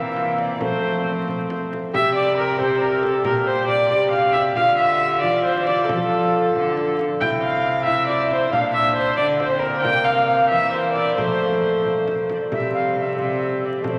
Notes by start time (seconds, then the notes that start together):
Already playing: E3 A#3 C4 E5
0.16 frame drum
0.38 D5, frame drum
0.61 F3 A3 C4 C5, frame drum
1.28 frame drum
1.50 frame drum
1.73 frame drum
1.94 C3 G4 E5, frame drum
2.15 D5
2.37 A#4
2.59 G4 C5, frame drum
2.81 A#4, frame drum
3.03 A4, frame drum
3.25 A#2 G4 A#4, frame drum
3.47 C5
3.68 D5
3.89 C3 G4 D5, frame drum
4.11 F5, frame drum
4.33 E5, frame drum
4.55 D3 F4 F5, frame drum
4.78 E5
5.21 E3 F4 D5, frame drum
5.44 C5, frame drum
5.65 D5, frame drum
5.87 F3 F4 A4, frame drum
6.55 D3, frame drum
6.77 frame drum
6.99 frame drum
7.21 C3 E4 G5, frame drum
7.41 F5
7.86 E4 E5, frame drum
8.08 D5, frame drum
8.30 C5, frame drum
8.51 A#2 D4 F5, frame drum
8.72 E5
8.95 C5
9.17 D3 D4 D5, frame drum
9.40 C5, frame drum
9.52 C4
9.60 A#4, frame drum
9.81 C3 A#3 G5, frame drum
9.85 G5
10.05 F5
10.50 E3 A#3 E5, frame drum
10.72 C5, frame drum
10.93 D5, frame drum
11.16 F3 A3 C5 D5, frame drum
11.23 C5
11.85 C5, frame drum
12.08 frame drum
12.30 D5, frame drum
12.50 C3 G3 C4 E5, frame drum
12.74 F5
12.97 E5
13.16 G3 C4 E5, frame drum
13.63 D5
13.83 F3 A3 C4 D5, frame drum
13.89 C5